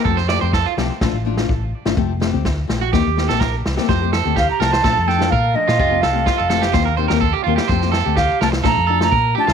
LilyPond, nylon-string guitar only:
\new Staff \with { instrumentName = "Nylon-string guitar" } { \time 4/4 \key f \mixolydian \tempo 4 = 126 <f a c' g'>16 r16 <f a g'>16 <a c' g'>16 r8 <f a c' g'>16 r16 <f a d' f'>16 r16 <f a d' f'>16 <a d' f'>16 r8. <a d' f'>16 | <f a c' g'>16 r16 <f a c' g'>16 <a c' g'>16 r8 <f a g'>16 r16 <ees bes c'>16 r16 <ees bes c' g'>16 <bes c' g'>16 r8. <bes c' g'>16 | <f a c' g'>16 <a c' g'>16 r16 <a c' g'>16 r8 <f a c' g'>16 r16 <f a d' f'>16 r16 <f a d'>16 <a d' f'>16 r8 <f a d' f'>16 r16 | <f c' g'>16 <a c' g'>16 r16 <a c' g'>16 r8 <f a c' g'>16 r16 <ees bes c' g'>16 r16 <ees bes c' g'>16 <bes c' g'>16 r8 <ees bes c' g'>16 r16 |
<f a c' g'>16 <a c' g'>16 r16 <a c' g'>16 r8 <f a c' g'>16 r16 <f a d' f'>16 r16 <f a d' f'>16 <a d' f'>16 r8 <f a d' f'>16 r16 | }